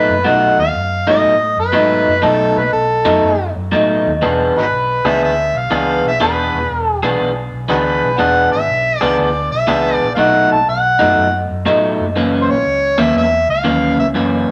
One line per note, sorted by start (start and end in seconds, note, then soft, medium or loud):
0.00 0.13 B2 medium
0.00 0.13 F#3 medium
0.00 0.13 A3 medium
0.00 0.13 D#4 medium
0.00 0.28 B4 medium
0.08 0.23 F#2 medium
0.25 0.54 B1 medium
0.25 0.62 B2 medium
0.25 0.63 F#3 medium
0.25 0.63 A3 medium
0.25 0.63 D#4 medium
0.25 0.58 F#5 loud
0.57 0.72 D#2 medium
0.57 1.05 F5 loud
0.74 1.03 F#2 medium
1.06 1.22 G#2 medium
1.06 1.34 B2 medium
1.06 1.34 F#3 medium
1.06 1.34 A3 medium
1.06 1.34 D#4 medium
1.06 1.55 D#5 loud
1.24 1.53 A2 loud
1.57 1.72 F#2 medium
1.57 2.26 B4 medium
1.73 2.03 G#2 medium
1.73 2.11 B2 medium
1.73 2.11 F#3 medium
1.73 2.11 A3 medium
1.73 2.12 D#4 medium
2.07 2.21 F#2 medium
2.22 2.52 B1 medium
2.22 2.60 B2 medium
2.22 2.61 F#3 medium
2.22 2.61 A3 medium
2.22 2.61 D#4 medium
2.22 2.59 A4 medium
2.56 2.71 B1 medium
2.56 2.72 B4 medium
2.73 3.02 B1 medium
2.73 3.51 A4 medium
3.05 3.20 F#2 medium
3.05 3.32 B2 medium
3.05 3.32 F#3 medium
3.05 3.32 A3 medium
3.05 3.32 D#4 medium
3.22 3.52 F#2 medium
3.55 3.70 F#2 medium
3.72 4.02 A2 medium
3.72 4.10 B2 medium
3.72 4.10 F#3 medium
3.72 4.10 A3 medium
3.72 4.11 D#4 medium
4.06 4.20 D#2 medium
4.22 4.51 E1 medium
4.22 4.60 E3 medium
4.22 4.60 B3 medium
4.22 4.60 D4 medium
4.22 4.60 G#4 medium
4.54 4.69 G#1 medium
4.54 4.66 D#4 medium
4.54 4.65 F#4 medium
4.54 5.08 B4 medium
4.71 5.01 B1 medium
5.04 5.19 C#2 medium
5.04 5.32 E3 medium
5.04 5.32 B3 medium
5.04 5.31 D4 medium
5.04 5.31 G#4 medium
5.04 5.22 E5 medium
5.20 5.50 D2 medium
5.20 5.59 E5 medium
5.54 5.68 B1 medium
5.58 6.05 F5 medium
5.70 6.00 C#2 medium
5.70 6.09 E3 medium
5.70 6.09 B3 medium
5.70 6.09 D4 medium
5.70 6.09 G#4 medium
6.03 6.18 B1 medium
6.08 6.21 E5 medium
6.20 6.50 E1 medium
6.20 6.58 E3 medium
6.20 6.58 B3 medium
6.20 6.59 D4 medium
6.20 6.59 G#4 medium
6.20 7.00 B4 medium
6.53 6.68 E1 medium
6.69 6.99 E1 medium
7.02 7.17 B1 medium
7.02 7.30 E3 medium
7.02 7.30 B3 medium
7.02 7.30 D4 medium
7.02 7.29 G#4 medium
7.20 7.49 B1 medium
7.52 7.67 B1 medium
7.69 7.99 D2 medium
7.69 8.07 E3 medium
7.69 8.07 B3 medium
7.69 8.07 D4 medium
7.69 7.76 D#4 medium
7.69 7.76 F#4 medium
7.69 8.08 G#4 medium
7.69 8.20 B4 medium
8.02 8.17 B1 medium
8.18 8.48 E1 medium
8.18 8.57 E3 medium
8.18 8.57 B3 medium
8.18 8.57 D4 medium
8.18 8.57 G#4 medium
8.18 8.52 F#5 medium
8.51 8.66 G#1 medium
8.51 8.98 E5 medium
8.68 8.98 B1 medium
8.98 9.16 C#2 medium
8.98 9.28 B3 medium
8.98 9.28 D4 medium
8.98 9.28 G#4 medium
8.98 9.19 D5 medium
9.03 9.29 E3 medium
9.18 9.48 D2 loud
9.18 9.51 D5 medium
9.51 9.66 B1 medium
9.51 9.95 E5 medium
9.67 9.97 C#2 medium
9.67 10.06 E3 medium
9.67 10.06 B3 medium
9.67 10.06 D4 medium
9.67 10.06 G#4 medium
9.95 10.10 D5 medium
10.01 10.16 A#1 medium
10.15 10.47 B1 medium
10.15 10.55 B2 medium
10.15 10.56 F#3 medium
10.15 10.56 A3 medium
10.15 10.56 D#4 medium
10.15 10.21 F5 medium
10.19 10.51 F#5 loud
10.51 10.66 B1 medium
10.51 10.67 A5 medium
10.67 10.97 B1 medium
10.67 11.47 F#5 medium
10.99 11.15 F#2 medium
10.99 11.27 B2 medium
10.99 11.27 F#3 medium
10.99 11.27 A3 medium
10.99 11.26 D#4 medium
11.17 11.46 F#2 loud
11.49 11.65 F#2 medium
11.66 11.96 A2 medium
11.66 12.04 B2 medium
11.66 12.04 F#3 medium
11.66 12.05 A3 medium
11.66 12.05 D#4 medium
11.99 12.14 F#2 medium
12.16 12.46 F#1 medium
12.16 12.54 F#2 medium
12.16 12.54 E3 medium
12.16 12.55 A#3 medium
12.16 12.55 C#4 medium
12.42 12.52 C5 medium
12.49 12.64 A#1 medium
12.49 13.02 C#5 medium
12.66 12.95 C#2 medium
12.98 13.14 D#2 medium
12.98 13.26 F#2 medium
12.98 13.26 E3 medium
12.98 13.25 A#3 medium
12.98 13.25 C#4 medium
12.98 13.17 E5 medium
13.15 13.45 E2 loud
13.15 13.48 E5 loud
13.48 13.63 C#2 medium
13.48 13.96 F5 medium
13.64 13.94 D#2 medium
13.64 14.03 F#2 medium
13.64 14.03 E3 medium
13.64 14.03 A#3 medium
13.64 14.03 C#4 medium
13.97 14.13 C#2 medium
13.97 14.07 E5 medium
14.14 14.44 F#1 medium
14.14 14.51 F#2 medium
14.14 14.51 E3 medium
14.14 14.51 A#3 medium
14.14 14.51 C#4 medium